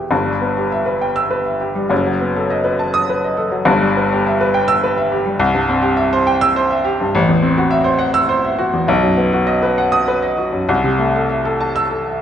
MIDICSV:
0, 0, Header, 1, 2, 480
1, 0, Start_track
1, 0, Key_signature, 1, "minor"
1, 0, Tempo, 597015
1, 88, Time_signature, 3, 2, 24, 8
1, 2486, Tempo, 579710
1, 7286, Tempo, 600601
1, 9206, Tempo, 624350
1, 9917, End_track
2, 0, Start_track
2, 0, Title_t, "Grand piano"
2, 0, Program_c, 0, 0
2, 0, Control_c, 0, 64, 127
2, 0, Note_on_c, 0, 28, 77
2, 0, Note_on_c, 0, 40, 82
2, 0, Note_on_c, 0, 47, 64
2, 0, Note_on_c, 0, 59, 58
2, 0, Note_on_c, 0, 67, 56
2, 0, Note_on_c, 0, 71, 57
2, 0, Note_on_c, 0, 76, 58
2, 0, Note_on_c, 0, 79, 69
2, 0, Note_on_c, 0, 88, 75
2, 86, Note_on_c, 0, 31, 94
2, 87, Note_on_c, 0, 43, 96
2, 88, Note_off_c, 0, 67, 0
2, 102, Control_c, 0, 64, 0
2, 105, Note_off_c, 0, 40, 0
2, 106, Note_off_c, 0, 47, 0
2, 106, Note_off_c, 0, 71, 0
2, 107, Note_off_c, 0, 28, 0
2, 108, Note_off_c, 0, 88, 0
2, 109, Note_off_c, 0, 76, 0
2, 110, Note_off_c, 0, 79, 0
2, 111, Note_off_c, 0, 59, 0
2, 210, Note_on_c, 0, 55, 77
2, 240, Control_c, 0, 64, 127
2, 332, Note_on_c, 0, 59, 70
2, 404, Note_off_c, 0, 55, 0
2, 459, Note_on_c, 0, 67, 74
2, 525, Note_off_c, 0, 59, 0
2, 580, Note_on_c, 0, 76, 87
2, 647, Note_off_c, 0, 67, 0
2, 692, Note_on_c, 0, 71, 76
2, 768, Note_off_c, 0, 76, 0
2, 816, Note_on_c, 0, 79, 81
2, 883, Note_off_c, 0, 71, 0
2, 931, Note_on_c, 0, 88, 103
2, 1006, Note_off_c, 0, 79, 0
2, 1050, Note_on_c, 0, 71, 84
2, 1124, Note_off_c, 0, 88, 0
2, 1176, Note_on_c, 0, 76, 72
2, 1244, Note_off_c, 0, 71, 0
2, 1292, Note_on_c, 0, 67, 71
2, 1368, Note_off_c, 0, 76, 0
2, 1408, Note_on_c, 0, 55, 75
2, 1486, Note_off_c, 0, 67, 0
2, 1502, Note_off_c, 0, 31, 0
2, 1503, Note_off_c, 0, 43, 0
2, 1525, Note_on_c, 0, 30, 100
2, 1532, Note_off_c, 0, 55, 0
2, 1532, Note_on_c, 0, 42, 101
2, 1552, Control_c, 0, 64, 0
2, 1661, Note_on_c, 0, 54, 81
2, 1683, Control_c, 0, 64, 127
2, 1778, Note_on_c, 0, 59, 73
2, 1850, Note_off_c, 0, 54, 0
2, 1899, Note_on_c, 0, 69, 81
2, 1967, Note_off_c, 0, 59, 0
2, 2012, Note_on_c, 0, 75, 86
2, 2087, Note_off_c, 0, 69, 0
2, 2125, Note_on_c, 0, 71, 87
2, 2202, Note_off_c, 0, 75, 0
2, 2245, Note_on_c, 0, 81, 81
2, 2317, Note_off_c, 0, 71, 0
2, 2362, Note_on_c, 0, 87, 113
2, 2436, Note_off_c, 0, 81, 0
2, 2489, Note_on_c, 0, 71, 86
2, 2555, Note_off_c, 0, 87, 0
2, 2610, Note_on_c, 0, 75, 75
2, 2681, Note_off_c, 0, 71, 0
2, 2718, Note_on_c, 0, 69, 82
2, 2801, Note_off_c, 0, 75, 0
2, 2836, Note_on_c, 0, 54, 78
2, 2915, Note_off_c, 0, 69, 0
2, 2928, Note_off_c, 0, 30, 0
2, 2932, Note_off_c, 0, 42, 0
2, 2951, Note_on_c, 0, 31, 111
2, 2959, Note_on_c, 0, 43, 111
2, 2962, Note_off_c, 0, 54, 0
2, 2981, Control_c, 0, 64, 0
2, 3083, Note_on_c, 0, 55, 86
2, 3113, Control_c, 0, 64, 127
2, 3210, Note_on_c, 0, 59, 82
2, 3275, Note_off_c, 0, 55, 0
2, 3340, Note_on_c, 0, 67, 92
2, 3398, Note_off_c, 0, 59, 0
2, 3459, Note_on_c, 0, 76, 83
2, 3522, Note_off_c, 0, 67, 0
2, 3575, Note_on_c, 0, 71, 92
2, 3642, Note_off_c, 0, 76, 0
2, 3687, Note_on_c, 0, 79, 91
2, 3760, Note_off_c, 0, 71, 0
2, 3800, Note_on_c, 0, 88, 126
2, 3877, Note_off_c, 0, 79, 0
2, 3931, Note_on_c, 0, 71, 93
2, 3994, Note_off_c, 0, 88, 0
2, 4044, Note_on_c, 0, 76, 89
2, 4119, Note_off_c, 0, 71, 0
2, 4165, Note_on_c, 0, 67, 88
2, 4235, Note_off_c, 0, 76, 0
2, 4277, Note_on_c, 0, 55, 77
2, 4355, Note_off_c, 0, 67, 0
2, 4361, Note_off_c, 0, 31, 0
2, 4365, Note_off_c, 0, 43, 0
2, 4392, Note_on_c, 0, 36, 112
2, 4399, Note_off_c, 0, 55, 0
2, 4417, Control_c, 0, 64, 0
2, 4515, Note_on_c, 0, 43, 84
2, 4559, Control_c, 0, 64, 127
2, 4640, Note_on_c, 0, 60, 93
2, 4709, Note_off_c, 0, 43, 0
2, 4744, Note_on_c, 0, 67, 91
2, 4830, Note_off_c, 0, 60, 0
2, 4868, Note_on_c, 0, 76, 97
2, 4942, Note_off_c, 0, 67, 0
2, 5000, Note_on_c, 0, 72, 105
2, 5063, Note_off_c, 0, 76, 0
2, 5117, Note_on_c, 0, 79, 104
2, 5188, Note_off_c, 0, 72, 0
2, 5236, Note_on_c, 0, 88, 125
2, 5307, Note_off_c, 0, 79, 0
2, 5359, Note_on_c, 0, 72, 106
2, 5427, Note_off_c, 0, 88, 0
2, 5479, Note_on_c, 0, 76, 90
2, 5548, Note_off_c, 0, 72, 0
2, 5594, Note_on_c, 0, 67, 95
2, 5668, Note_off_c, 0, 76, 0
2, 5729, Note_on_c, 0, 43, 83
2, 5786, Note_off_c, 0, 67, 0
2, 5797, Note_off_c, 0, 36, 0
2, 5842, Note_off_c, 0, 43, 0
2, 5844, Note_on_c, 0, 33, 125
2, 5850, Control_c, 0, 64, 0
2, 5958, Note_on_c, 0, 40, 91
2, 5978, Control_c, 0, 64, 127
2, 6074, Note_on_c, 0, 60, 88
2, 6148, Note_off_c, 0, 40, 0
2, 6198, Note_on_c, 0, 66, 91
2, 6267, Note_off_c, 0, 60, 0
2, 6306, Note_on_c, 0, 76, 101
2, 6389, Note_off_c, 0, 66, 0
2, 6420, Note_on_c, 0, 72, 103
2, 6504, Note_off_c, 0, 76, 0
2, 6538, Note_on_c, 0, 78, 97
2, 6622, Note_off_c, 0, 72, 0
2, 6665, Note_on_c, 0, 88, 127
2, 6741, Note_off_c, 0, 78, 0
2, 6790, Note_on_c, 0, 72, 99
2, 6866, Note_off_c, 0, 88, 0
2, 6918, Note_on_c, 0, 76, 84
2, 6989, Note_off_c, 0, 72, 0
2, 7035, Note_on_c, 0, 66, 95
2, 7114, Note_off_c, 0, 76, 0
2, 7157, Note_on_c, 0, 40, 80
2, 7234, Note_off_c, 0, 66, 0
2, 7258, Note_off_c, 0, 33, 0
2, 7280, Note_on_c, 0, 35, 117
2, 7283, Note_off_c, 0, 40, 0
2, 7300, Control_c, 0, 64, 0
2, 7400, Note_on_c, 0, 42, 83
2, 7450, Control_c, 0, 64, 127
2, 7513, Note_on_c, 0, 59, 90
2, 7592, Note_off_c, 0, 42, 0
2, 7638, Note_on_c, 0, 66, 90
2, 7709, Note_off_c, 0, 59, 0
2, 7748, Note_on_c, 0, 75, 97
2, 7831, Note_off_c, 0, 66, 0
2, 7875, Note_on_c, 0, 71, 91
2, 7947, Note_off_c, 0, 75, 0
2, 7998, Note_on_c, 0, 78, 92
2, 8070, Note_off_c, 0, 71, 0
2, 8110, Note_on_c, 0, 87, 115
2, 8192, Note_off_c, 0, 78, 0
2, 8237, Note_on_c, 0, 71, 92
2, 8308, Note_off_c, 0, 87, 0
2, 8353, Note_on_c, 0, 75, 83
2, 8432, Note_off_c, 0, 71, 0
2, 8478, Note_on_c, 0, 66, 82
2, 8550, Note_off_c, 0, 75, 0
2, 8594, Note_on_c, 0, 42, 78
2, 8672, Note_off_c, 0, 66, 0
2, 8688, Note_off_c, 0, 35, 0
2, 8718, Note_off_c, 0, 42, 0
2, 8722, Note_on_c, 0, 36, 109
2, 8737, Control_c, 0, 64, 0
2, 8845, Note_on_c, 0, 48, 90
2, 8866, Control_c, 0, 64, 127
2, 8964, Note_on_c, 0, 57, 83
2, 9037, Note_off_c, 0, 48, 0
2, 9099, Note_on_c, 0, 69, 83
2, 9158, Note_off_c, 0, 57, 0
2, 9207, Note_on_c, 0, 76, 81
2, 9284, Note_off_c, 0, 69, 0
2, 9329, Note_on_c, 0, 69, 90
2, 9396, Note_off_c, 0, 76, 0
2, 9447, Note_on_c, 0, 81, 85
2, 9516, Note_off_c, 0, 69, 0
2, 9563, Note_on_c, 0, 88, 114
2, 9636, Note_off_c, 0, 81, 0
2, 9682, Note_on_c, 0, 69, 77
2, 9755, Note_off_c, 0, 88, 0
2, 9813, Note_on_c, 0, 76, 69
2, 9878, Note_off_c, 0, 69, 0
2, 9917, Note_off_c, 0, 36, 0
2, 9917, Note_off_c, 0, 76, 0
2, 9917, End_track
0, 0, End_of_file